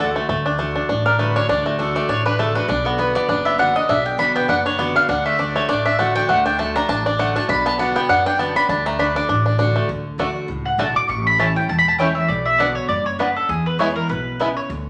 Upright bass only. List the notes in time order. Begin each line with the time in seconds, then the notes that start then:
Already playing: D2
0.29 D2
0.89 A1
1.49 D2
2.09 A1
2.68 B1
3.28 F#1
3.89 B1
4.49 F#1
5.09 D2
5.69 A1
6.29 D2
6.89 A1
7.49 B1
8.09 F#2
8.69 D2
9.29 A1
9.89 D2
10.18 D2
10.48 C#2
10.78 B1
11.09 A1
11.69 E1
12.29 B1
12.89 F#1
13.49 E2
14.10 B1
14.69 D2